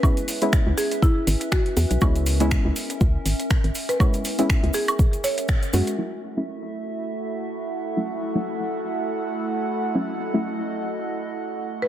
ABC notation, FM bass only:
X:1
M:4/4
L:1/16
Q:"Swing 16ths" 1/4=121
K:F#dor
V:1 name="FM bass" clef=bass
z4 z C,, z4 G,,, z3 E,, B,,, | C,,4 z C,, z2 C,, z G,,, z2 G,,, z2 | z4 z C,, z8 F,, z | z16 |
z16 | z16 |]